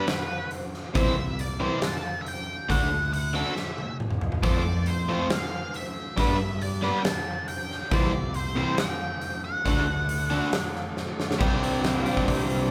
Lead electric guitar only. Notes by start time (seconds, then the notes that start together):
Already playing: B4
0.96 E5
1.41 D5
1.84 A5
2.21 E5
2.28 G5
2.71 F#5
3.13 F#5
3.35 E5
4.43 D5
4.87 C5
5.31 F5
5.76 E5
6.19 E5
6.62 D5
6.98 G5
7.05 A5
7.48 G5
7.92 D5
8.36 C5
8.79 G5
9.44 F#5